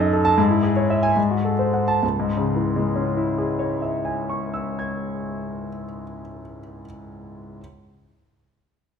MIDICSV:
0, 0, Header, 1, 2, 480
1, 0, Start_track
1, 0, Key_signature, 4, "minor"
1, 0, Tempo, 524476
1, 340, Time_signature, 6, 3, 24, 8
1, 1320, Tempo, 562324
1, 7769, End_track
2, 0, Start_track
2, 0, Title_t, "Grand piano"
2, 0, Program_c, 0, 0
2, 0, Control_c, 0, 64, 127
2, 0, Note_on_c, 0, 42, 76
2, 0, Note_on_c, 0, 63, 62
2, 0, Note_on_c, 0, 69, 58
2, 4, Note_on_c, 0, 75, 57
2, 117, Note_off_c, 0, 69, 0
2, 117, Note_on_c, 0, 69, 65
2, 181, Note_off_c, 0, 75, 0
2, 227, Note_on_c, 0, 81, 80
2, 297, Note_off_c, 0, 69, 0
2, 320, Note_off_c, 0, 42, 0
2, 341, Note_off_c, 0, 81, 0
2, 346, Note_on_c, 0, 44, 77
2, 361, Control_c, 0, 64, 0
2, 365, Note_off_c, 0, 63, 0
2, 462, Note_on_c, 0, 64, 58
2, 526, Control_c, 0, 64, 127
2, 576, Note_on_c, 0, 68, 54
2, 650, Note_off_c, 0, 64, 0
2, 700, Note_on_c, 0, 73, 56
2, 769, Note_off_c, 0, 68, 0
2, 827, Note_on_c, 0, 76, 59
2, 893, Note_off_c, 0, 73, 0
2, 942, Note_on_c, 0, 80, 75
2, 1019, Note_off_c, 0, 76, 0
2, 1046, Note_off_c, 0, 44, 0
2, 1065, Note_off_c, 0, 80, 0
2, 1066, Note_on_c, 0, 44, 68
2, 1087, Control_c, 0, 64, 0
2, 1200, Note_on_c, 0, 66, 52
2, 1237, Control_c, 0, 64, 127
2, 1324, Note_on_c, 0, 69, 50
2, 1398, Note_off_c, 0, 66, 0
2, 1446, Note_on_c, 0, 72, 53
2, 1520, Note_off_c, 0, 69, 0
2, 1569, Note_on_c, 0, 78, 50
2, 1646, Note_off_c, 0, 72, 0
2, 1692, Note_on_c, 0, 81, 69
2, 1768, Note_off_c, 0, 78, 0
2, 1795, Note_off_c, 0, 44, 0
2, 1815, Note_off_c, 0, 81, 0
2, 1819, Note_on_c, 0, 37, 54
2, 1836, Control_c, 0, 64, 0
2, 1964, Note_on_c, 0, 44, 61
2, 2026, Control_c, 0, 64, 127
2, 2114, Note_on_c, 0, 49, 55
2, 2271, Note_on_c, 0, 52, 50
2, 2446, Note_on_c, 0, 56, 55
2, 2612, Note_on_c, 0, 61, 50
2, 2796, Note_on_c, 0, 64, 49
2, 2976, Note_on_c, 0, 68, 47
2, 3154, Note_on_c, 0, 73, 48
2, 3349, Note_on_c, 0, 76, 47
2, 3546, Note_on_c, 0, 80, 45
2, 3755, Note_on_c, 0, 85, 46
2, 3961, Note_on_c, 0, 88, 41
2, 4176, Note_on_c, 0, 92, 38
2, 4926, Note_off_c, 0, 37, 0
2, 5071, Note_off_c, 0, 44, 0
2, 5221, Note_off_c, 0, 49, 0
2, 5378, Note_off_c, 0, 52, 0
2, 5553, Note_off_c, 0, 56, 0
2, 5719, Note_off_c, 0, 61, 0
2, 5903, Note_off_c, 0, 64, 0
2, 5931, Note_off_c, 0, 73, 0
2, 5933, Note_off_c, 0, 76, 0
2, 5933, Note_off_c, 0, 80, 0
2, 5935, Note_off_c, 0, 68, 0
2, 5936, Note_off_c, 0, 88, 0
2, 5936, Note_off_c, 0, 92, 0
2, 5937, Note_off_c, 0, 85, 0
2, 6579, Control_c, 0, 64, 0
2, 7769, End_track
0, 0, End_of_file